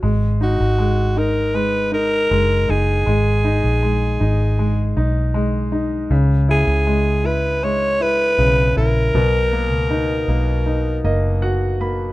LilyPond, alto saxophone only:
\new Staff \with { instrumentName = "Alto saxophone" } { \time 4/4 \key gis \minor \tempo 4 = 79 r8 fis'4 ais'8 b'8 ais'4 gis'8~ | gis'2~ gis'8 r4. | r8 gis'4 b'8 cis''8 b'4 ais'8~ | ais'2~ ais'8 r4. | }